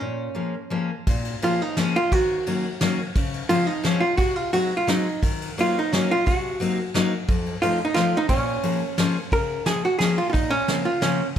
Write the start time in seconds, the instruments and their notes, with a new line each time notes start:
0.00 steel-string acoustic guitar A#2, hollow-body jazz guitar C#4
0.35 steel-string acoustic guitar F3 G#3 A#3 C#4
0.70 steel-string acoustic guitar F3 G#3 A#3 C#4
1.07 steel-string acoustic guitar A#2, kick, ride
1.25 ride
1.42 steel-string acoustic guitar F3 G#3 A#3 C#4, hollow-body jazz guitar F4, ride
1.62 hollow-body jazz guitar D#4
1.77 steel-string acoustic guitar F3 G#3 A#3 C#4, hollow-body jazz guitar C#4, snare, ride
1.96 hollow-body jazz guitar F4
2.12 steel-string acoustic guitar D#3, hollow-body jazz guitar F#4, kick, ride
2.46 steel-string acoustic guitar D#3 F#3 A#3 C#4, ride
2.81 steel-string acoustic guitar D#3 F#3 A#3 C#4, snare, ride
3.15 steel-string acoustic guitar C#3, kick, ride
3.34 ride
3.49 steel-string acoustic guitar F3 G#3 C4 C#4, hollow-body jazz guitar F4, ride
3.67 hollow-body jazz guitar D#4
3.83 steel-string acoustic guitar F3 G#3 C4 C#4, hollow-body jazz guitar C#4, snare, ride
4.00 hollow-body jazz guitar F4
4.17 steel-string acoustic guitar C3, hollow-body jazz guitar F#4, kick, ride
4.36 hollow-body jazz guitar F4
4.52 steel-string acoustic guitar F#3 G#3 C4 D#4, hollow-body jazz guitar F#4, ride
4.77 hollow-body jazz guitar F4
4.87 steel-string acoustic guitar F#3 G#3 C4 D#4, hollow-body jazz guitar D#4, snare, ride
5.23 steel-string acoustic guitar D#3, kick, ride
5.42 ride
5.58 steel-string acoustic guitar F#3 A#3 C#4 D#4, hollow-body jazz guitar F4, ride
5.79 hollow-body jazz guitar D#4
5.92 steel-string acoustic guitar F#3 A#3 C#4 D#4, hollow-body jazz guitar C#4, snare, ride
6.11 hollow-body jazz guitar F4
6.26 steel-string acoustic guitar C3, hollow-body jazz guitar F#4, kick, ride
6.60 steel-string acoustic guitar F#3 A#3 C4 D#4, ride
6.94 steel-string acoustic guitar F#3 A#3 C4 D#4, snare, ride
7.28 steel-string acoustic guitar F2, kick, ride
7.46 ride
7.62 steel-string acoustic guitar F3 A3 C4 D#4, hollow-body jazz guitar F4, ride
7.85 hollow-body jazz guitar D#4
7.94 steel-string acoustic guitar F3 A3 C4 D#4, hollow-body jazz guitar F4, snare, ride
8.17 hollow-body jazz guitar D#4
8.29 steel-string acoustic guitar A#2, hollow-body jazz guitar C#4, kick, ride
8.63 steel-string acoustic guitar F3 G#3 A#3 C#4, ride
8.98 steel-string acoustic guitar F3 G#3 A#3 C#4, snare, ride
9.32 steel-string acoustic guitar C#3, hollow-body jazz guitar A#4, kick, ride
9.66 steel-string acoustic guitar F3 G#3 A#3 C#4, hollow-body jazz guitar G#4, snare, ride
9.85 hollow-body jazz guitar F#4
9.99 steel-string acoustic guitar F3 G#3 A#3 C#4, hollow-body jazz guitar G#4, snare, ride
10.18 hollow-body jazz guitar F4
10.30 hollow-body jazz guitar D#4 F4
10.34 steel-string acoustic guitar A#2, kick, ride
10.50 hollow-body jazz guitar C#4, ride
10.68 steel-string acoustic guitar C#3 F3 A#3 C4, snare, ride
10.85 hollow-body jazz guitar F4
11.02 steel-string acoustic guitar C#3 F3 A#3 C4, hollow-body jazz guitar C#4, snare, ride